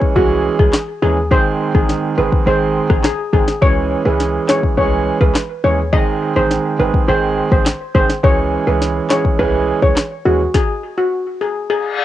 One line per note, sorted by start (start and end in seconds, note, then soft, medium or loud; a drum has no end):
0.00 0.13 E3 medium
0.00 0.14 G#3 medium
0.00 0.14 C#4 medium
0.00 0.14 G#4 medium
0.00 kick medium
0.15 0.49 C2 loud
0.15 0.55 E3 loud
0.15 0.56 G#3 medium
0.15 0.56 C#4 medium
0.15 0.28 F#4 medium
0.15 0.56 G#4 loud
0.15 kick medium
0.59 0.70 C#2 medium
0.59 0.73 E3 medium
0.59 0.73 G#3 medium
0.59 0.73 C#4 medium
0.59 0.71 G#4 medium
0.59 0.73 G#4 medium
0.59 kick medium
0.73 snare loud
0.73 clap medium
1.02 1.33 D#2 loud
1.02 1.16 E3 medium
1.02 1.17 G#3 medium
1.02 1.17 C#4 medium
1.02 1.15 G#4 medium
1.02 1.17 G#4 medium
1.31 1.53 G#1 loud
1.31 1.71 D#3 medium
1.31 1.71 G#3 medium
1.31 1.71 C4 medium
1.31 1.71 G#4 loud
1.31 1.44 C5 loud
1.31 kick loud
1.74 1.97 A1 medium
1.74 2.14 D#3 medium
1.74 2.14 G#3 medium
1.74 2.14 C4 medium
1.74 1.87 G#4 medium
1.74 2.15 G#4 medium
1.74 kick medium
1.89 snare medium
2.17 2.29 G#1 medium
2.17 2.44 D#3 medium
2.17 2.44 G#3 medium
2.17 2.44 C4 medium
2.17 2.45 G#4 medium
2.17 2.30 B4 medium
2.32 kick medium
2.46 2.80 G#1 loud
2.46 2.86 D#3 medium
2.46 2.86 G#3 medium
2.46 2.86 C4 medium
2.46 2.87 G#4 loud
2.46 2.59 C5 medium
2.90 3.12 A1 medium
2.90 3.04 D#3 medium
2.90 3.04 G#3 medium
2.90 3.04 C4 medium
2.90 3.02 G#4 medium
2.90 3.04 G#4 medium
2.90 kick medium
2.90 cross-stick loud
3.04 3.17 G#4 medium
3.04 snare loud
3.04 clap medium
3.33 3.44 G#1 medium
3.33 3.47 D#3 medium
3.33 3.47 G#3 medium
3.33 3.47 C4 medium
3.33 3.45 G#4 medium
3.33 3.47 G#4 medium
3.33 kick medium
3.48 snare medium
3.61 3.95 C#2 loud
3.61 4.02 E3 medium
3.61 4.02 G#3 medium
3.61 4.02 C#4 medium
3.61 4.02 G#4 loud
3.61 3.74 C#5 loud
3.61 kick loud
4.05 4.39 C#2 medium
4.05 4.45 E3 medium
4.05 4.45 G#3 medium
4.05 4.45 C#4 medium
4.05 4.45 G#4 medium
4.05 4.18 B4 medium
4.20 snare medium
4.48 4.75 E3 medium
4.48 4.75 G#3 medium
4.48 4.75 C#4 medium
4.48 4.75 G#4 medium
4.48 4.61 C#5 medium
4.48 snare loud
4.48 clap medium
4.63 kick medium
4.77 5.11 C2 loud
4.77 5.17 E3 medium
4.77 5.17 G#3 medium
4.77 5.17 C#4 medium
4.77 5.17 G#4 loud
4.77 4.90 C#5 medium
4.77 kick medium
5.20 5.32 C#2 medium
5.20 5.35 E3 medium
5.20 5.35 G#3 medium
5.20 5.35 C#4 medium
5.20 5.35 G#4 medium
5.20 5.33 B4 medium
5.20 kick medium
5.35 snare loud
5.35 clap medium
5.64 5.94 D#2 medium
5.64 5.78 E3 medium
5.64 5.78 G#3 medium
5.64 5.78 C#4 medium
5.64 5.78 G#4 medium
5.64 5.76 C#5 medium
5.93 6.15 G#1 loud
5.93 6.33 D#3 medium
5.93 6.33 G#3 medium
5.93 6.33 C4 medium
5.93 6.33 G#4 loud
5.93 6.05 D#5 loud
5.93 kick loud
6.36 6.58 A1 medium
6.36 6.76 D#3 medium
6.36 6.76 G#3 medium
6.36 6.76 C4 medium
6.36 6.76 G#4 medium
6.36 6.48 C5 medium
6.51 snare medium
6.79 6.90 G#1 medium
6.79 7.06 D#3 medium
6.79 7.06 G#3 medium
6.79 7.06 C4 medium
6.79 7.06 G#4 medium
6.79 6.92 B4 medium
6.94 kick medium
7.08 7.41 G#1 loud
7.08 7.48 D#3 medium
7.08 7.48 G#3 medium
7.08 7.48 C4 medium
7.08 7.48 G#4 loud
7.08 7.20 C5 medium
7.51 7.74 A1 medium
7.51 7.65 D#3 medium
7.51 7.65 G#3 medium
7.51 7.66 C4 medium
7.51 7.66 G#4 medium
7.51 7.64 C5 medium
7.51 kick medium
7.66 snare loud
7.66 clap medium
7.94 8.06 G#1 medium
7.94 8.09 D#3 medium
7.94 8.09 G#3 medium
7.94 8.09 C4 medium
7.94 8.09 G#4 medium
7.94 8.07 C5 medium
7.94 kick medium
8.10 snare medium
8.23 8.57 C#2 loud
8.23 8.63 E3 medium
8.23 8.63 G#3 medium
8.23 8.63 C#4 medium
8.23 8.63 G#4 loud
8.23 8.36 C#5 loud
8.23 kick loud
8.66 9.00 C#2 medium
8.66 9.06 E3 medium
8.66 9.07 G#3 medium
8.66 9.07 C#4 medium
8.66 9.07 G#4 medium
8.66 8.79 B4 medium
8.82 snare medium
9.10 9.37 E3 medium
9.10 9.37 G#3 medium
9.10 9.37 C#4 medium
9.10 9.37 G#4 medium
9.10 9.22 C#5 medium
9.10 snare loud
9.10 clap medium
9.25 kick loud
9.39 9.72 C2 loud
9.39 9.79 E3 loud
9.39 9.79 G#3 medium
9.39 9.79 C#4 medium
9.39 9.79 G#4 loud
9.39 9.51 B4 medium
9.39 kick medium
9.82 9.93 C#2 medium
9.82 9.96 E3 medium
9.82 9.96 G#3 medium
9.82 9.96 C#4 medium
9.82 9.96 G#4 medium
9.82 9.94 C#5 medium
9.82 kick medium
9.96 snare loud
9.96 clap medium
10.25 10.48 D#2 medium
10.25 10.39 E3 medium
10.25 10.39 G#3 medium
10.25 10.40 C#4 medium
10.25 10.38 F#4 medium
10.25 10.40 G#4 medium
10.54 10.67 G#4 loud
10.54 kick loud
10.54 snare medium
10.98 11.10 F#4 medium
11.41 11.53 G#4 medium
11.70 11.82 G#4 medium
11.70 reverse cymbal medium